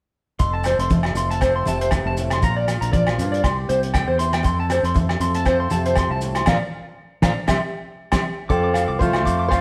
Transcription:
0.39 F1 F2 A4 C6, kick, closed hi-hat, muted conga, maracas
0.54 A5
0.64 C5, cross-stick, closed hi-hat, muted conga, low agogo, maracas
0.79 F1 C6, closed hi-hat
0.90 F3 A3, kick, closed hi-hat, high conga, maracas
1.03 cross-stick, low agogo
1.15 F1 A4 C6, closed hi-hat, maracas
1.31 A5, closed hi-hat
1.41 C4 C5, kick, cross-stick, closed hi-hat, muted conga, low agogo, maracas
1.56 C6
1.65 F1 C3 A3 A5, closed hi-hat, high conga, maracas
1.81 C5, closed hi-hat
1.91 G2, muted clean electric guitar stroke, kick, cross-stick, closed hi-hat, high conga, low agogo, maracas
2.05 F1 A5
2.17 A2, closed hi-hat, muted conga, maracas
2.30 C6, cross-stick, closed hi-hat, low agogo
2.42 A#1 A#2 F4 A#5, kick, closed hi-hat, muted conga, maracas
2.57 D5
2.67 cross-stick, closed hi-hat, muted conga, low agogo, maracas
2.81 A#1 A#5, closed hi-hat
2.93 F3 A#3 D5, kick, closed hi-hat, high conga, maracas
3.07 cross-stick, low agogo
3.18 G2 F4, closed hi-hat, maracas
3.32 D5, closed hi-hat
3.43 C2 G4 C6, muted steel-string acoustic guitar stroke, kick, cross-stick, closed hi-hat, muted conga, low agogo, maracas
3.69 C2 C5, closed hi-hat, maracas
3.83 closed hi-hat
3.94 D3 G5, kick, cross-stick, closed hi-hat, high conga, low agogo, maracas
4.07 E2 C5
4.19 E3 C6, closed hi-hat, muted conga, maracas
4.33 G5, cross-stick, closed hi-hat, low agogo
4.43 F2 A4 C6, kick, closed hi-hat, muted conga, maracas
4.60 A5
4.70 C5, cross-stick, closed hi-hat, muted conga, low agogo, maracas
4.83 F2 C6, closed hi-hat
4.94 F3 A3, kick, closed hi-hat, high conga, maracas
5.09 cross-stick, low agogo
5.20 F2 A4 C6, closed hi-hat, maracas
5.35 A5, closed hi-hat
5.45 C4 C5, kick, cross-stick, closed hi-hat, muted conga, low agogo, maracas
5.60 C6
5.70 F2 C3 A3 A5, closed hi-hat, high conga, maracas
5.86 C5, closed hi-hat
5.96 C6, kick, cross-stick, closed hi-hat, high conga, low agogo, maracas
6.10 C2 A5
6.21 A2, closed hi-hat, muted conga, maracas
6.35 C6, cross-stick, closed hi-hat, low agogo
6.46 A#1 D3 F3 A#3 D5 F5 A#5, kick, snare, high conga, low agogo, maracas
7.22 A#1 D3 F3 A#3 D5 F5 A#5, kick, snare, high conga, low agogo, maracas
7.47 C2 C3 E3 G3 E5 G5 C6, kick, snare, high conga, low agogo, maracas
8.12 C2 C3 E3 G3 E5 G5 C6, kick, snare, high conga, low agogo, maracas
8.49 F2 F3 C4 A4 D6, kick, muted conga, maracas
8.63 D6
8.74 F5, muted steel-string acoustic guitar stroke, cross-stick, closed hi-hat, low agogo, maracas
8.88 C2 D6
8.99 A3 F4 C5, kick, muted conga, high conga, maracas
9.13 cross-stick, low agogo
9.25 F2 F3 D6, kick, closed hi-hat, maracas
9.39 D6
9.48 A3 C5 F5, kick, cross-stick, muted conga, low agogo, maracas
9.53 F4

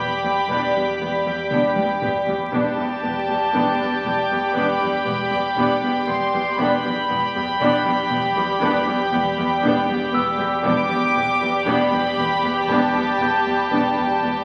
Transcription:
Already playing: E2 G4 D5 G5 B5 D6
0.24 E2 G3 B3
0.48 E1 E2 B3 D4, taiko
0.75 E2 G3 B3
1.00 E1 E2 B3
1.26 E2 G3 B3
1.50 E1 E2 B3 D4, taiko mid
1.76 E2 G3 B3, taiko high
2.02 E1 E2 B3, taiko low-mid
2.27 E2 G3 B3, taiko low
2.52 E1 E2 B3 D4 G4 D5 G5 A5 D6, taiko
2.78 E2 G3 B3
3.03 E1 E2 B3
3.28 E2 G3 B3
3.53 E1 E2 B3 D4
3.80 E2 G3 B3
4.05 E1 E2 B3
4.30 E2 G3 B3
4.55 E1 E2 B3 D4 B5
4.81 E2 G3 B3
5.06 E1 E2 B3
5.30 E2 G3 B3
5.56 E1 E2 B3 D4
5.82 E2 G3 B3
6.08 E1 E2 B3 C6
6.34 E2 G3 B3
6.58 E1 E2 B3 D4 G4 D5 G5 B5
6.83 E2 G3 B3
7.10 E1 E2 B3
7.35 E2 G3 B3
7.61 E1 E2 B3 D4
7.85 E2 G3 B3
8.10 E1 E2 B3
8.36 E2 G3 B3
8.61 E1 E2 B3 D4
8.87 E2 G3 B3
9.12 E1 E2 B3
9.38 E2 G3 B3
9.63 E1 E2 B3 D4
9.89 E2 G3 B3
10.13 E1 E2 B3 E6
10.38 E2 G3 B3
10.63 E1 E2 B3 D4 G4 D5 G5 B5 D6, taiko
10.89 E2 G3 B3
11.15 E1 E2 B3
11.41 E2 G3 B3
11.66 E1 E2 B3 D4 B5
11.92 E2 G3 B3
12.18 E1 E2 B3
12.44 E2 G3 B3
12.68 E1 E2 B3 D4 A5
12.95 E2 G3 B3
13.19 E1 E2 B3 G6
13.46 E2 G3 B3
13.71 E1 E2 B3 D4
13.96 E2 G3 B3
14.21 E1 E2 B3

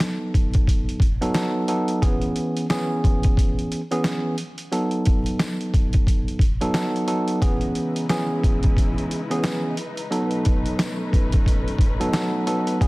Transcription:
Already playing: F#3 B3 D#4 A4
0.00 snare, closed hi-hat, tambourine
0.34 kick, closed hi-hat
0.54 kick, closed hi-hat
0.67 kick, closed hi-hat
0.89 closed hi-hat
1.00 kick, closed hi-hat
1.21 F#3 B3 D#4 A4, closed hi-hat
1.34 F#3 B3 D#4 A4, snare, closed hi-hat, tambourine
1.68 F#3 B3 D#4 A4, closed hi-hat
1.88 closed hi-hat
2.02 E3 B3 C#4 G#4, kick, closed hi-hat
2.22 closed hi-hat
2.36 closed hi-hat
2.57 closed hi-hat
2.70 E3 B3 C#4 G#4, snare, closed hi-hat, tambourine
3.04 kick, closed hi-hat
3.23 kick, closed hi-hat
3.37 kick, closed hi-hat
3.59 closed hi-hat
3.72 closed hi-hat
3.91 E3 B3 C#4 G#4, closed hi-hat
4.04 snare, closed hi-hat, tambourine
4.38 closed hi-hat
4.58 closed hi-hat
4.72 F#3 B3 D#4 A4, closed hi-hat
4.91 closed hi-hat
5.05 kick, closed hi-hat
5.26 closed hi-hat
5.39 snare, closed hi-hat, tambourine
5.61 closed hi-hat
5.74 kick, closed hi-hat
5.93 kick, closed hi-hat
6.07 kick, closed hi-hat
6.28 closed hi-hat
6.39 kick, closed hi-hat
6.61 F#3 B3 D#4 A4, closed hi-hat
6.74 F#3 B3 D#4 A4, snare, closed hi-hat, tambourine
6.96 closed hi-hat
7.07 F#3 B3 D#4 A4, closed hi-hat
7.28 closed hi-hat
7.41 C#3 E3 G#3 B3 C#4 D#4 E4 G#4 B4, kick, closed hi-hat
7.61 closed hi-hat
7.75 closed hi-hat
7.96 closed hi-hat
8.09 E3 B3 C#4 G#4, snare, closed hi-hat, tambourine
8.43 kick, closed hi-hat
8.63 kick, closed hi-hat
8.77 kick, closed hi-hat
8.98 closed hi-hat
9.11 closed hi-hat
9.30 E3 B3 C#4 G#4, closed hi-hat
9.43 snare, closed hi-hat, tambourine
9.77 closed hi-hat
9.97 closed hi-hat
10.11 B2 F#3 A3 B3 C#4 D#4 A4, closed hi-hat
10.31 closed hi-hat
10.45 kick, closed hi-hat
10.66 closed hi-hat
10.79 snare, closed hi-hat, tambourine
11.13 kick, closed hi-hat
11.32 kick, closed hi-hat
11.46 kick, closed hi-hat
11.68 closed hi-hat
11.79 kick, closed hi-hat
12.00 F#3 B3 D#4 A4, closed hi-hat
12.12 F#3 B3 D#4 A4, snare, closed hi-hat, tambourine
12.46 F#3 B3 D#4 A4, closed hi-hat
12.67 closed hi-hat
12.80 C#3 E3 G#3 B3 C#4 E4 G#4, kick, closed hi-hat

